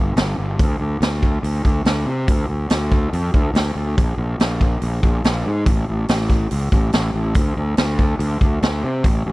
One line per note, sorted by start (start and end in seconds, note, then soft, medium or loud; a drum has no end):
0.00 0.14 G1 medium
0.16 0.35 G1 medium
0.16 snare loud
0.16 open hi-hat soft
0.38 0.57 G1 medium
0.59 0.78 D2 medium
0.59 kick loud
0.59 open hi-hat soft
0.80 0.98 D2 medium
1.01 1.38 D2 medium
1.01 snare loud
1.01 open hi-hat medium
1.13 snare soft
1.23 kick medium
1.43 1.62 D2 medium
1.43 open hi-hat medium
1.65 1.84 D2 medium
1.65 kick medium
1.85 2.04 D2 medium
1.85 snare loud
1.85 open hi-hat soft
2.06 2.25 C3 medium
2.28 2.47 D2 medium
2.28 kick medium
2.28 open hi-hat medium
2.49 2.68 D2 medium
2.70 3.07 D2 medium
2.70 snare loud
2.70 open hi-hat medium
2.92 kick medium
3.13 3.31 F2 medium
3.13 open hi-hat medium
3.34 3.53 D2 medium
3.34 kick medium
3.54 3.73 D2 medium
3.54 snare medium
3.54 open hi-hat medium
3.75 3.94 D2 medium
3.98 4.16 A#1 medium
3.98 kick loud
3.98 open hi-hat soft
4.18 4.37 A#1 medium
4.39 4.76 A#1 medium
4.39 snare loud
4.39 open hi-hat soft
4.61 kick medium
4.82 5.00 A#1 medium
4.82 open hi-hat medium
5.03 5.22 A#1 medium
5.03 kick medium
5.24 5.43 A#1 medium
5.24 snare loud
5.24 open hi-hat soft
5.46 5.64 G#2 medium
5.66 5.85 A1 medium
5.66 kick loud
5.66 open hi-hat soft
5.88 6.07 A1 medium
6.08 6.46 A1 medium
6.08 snare loud
6.08 open hi-hat medium
6.20 snare soft
6.30 kick medium
6.51 6.70 C#2 medium
6.51 open hi-hat medium
6.72 6.91 A1 medium
6.72 kick medium
6.93 7.12 A1 medium
6.93 snare loud
6.93 open hi-hat medium
7.14 7.33 A1 medium
7.34 7.54 D2 loud
7.34 kick medium
7.34 open hi-hat soft
7.57 7.75 D2 medium
7.77 8.14 D2 medium
7.77 snare loud
7.77 open hi-hat soft
7.90 snare soft
7.99 kick medium
8.19 8.38 D2 loud
8.19 open hi-hat medium
8.41 8.60 D2 medium
8.41 kick medium
8.62 8.81 D2 medium
8.62 snare loud
8.62 open hi-hat medium
8.84 9.02 C3 medium
9.04 9.23 A1 medium
9.04 kick medium
9.04 open hi-hat soft
9.26 9.32 A1 medium